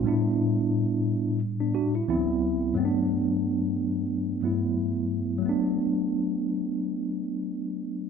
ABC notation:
X:1
M:4/4
L:1/16
Q:"Swing 16ths" 1/4=89
K:Bphr
V:1 name="Tine electric piano"
z8 z [B,D] [DF] E2 z3 | z16 | z16 |]
V:2 name="Tine electric piano"
[A,,G,B,DE]12 [D,,E,F,B,CE]4 | [G,,F,A,B,CD]8- [G,,F,A,B,CD]2 [G,,F,A,B,E]6 | [F,A,B,D]16 |]